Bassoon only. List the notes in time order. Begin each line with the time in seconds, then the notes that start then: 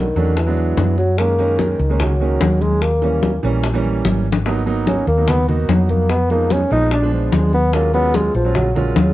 Already playing: D#3
0.37 E3
0.98 F#3
1.18 A#3
1.60 D#3
2.01 F#3
2.62 G#3
2.82 A#3
4.88 C#4
5.08 A#3
5.29 B3
5.49 D#3
5.69 F#3
5.90 A#3
6.10 B3
6.31 A#3
6.52 C#4
6.72 D#4
6.93 D4
7.13 F3
7.34 G#3
7.54 B3
7.74 A#3
7.94 B3
8.15 G#3
8.35 F3
8.56 F#3
8.76 A#2
8.96 C#3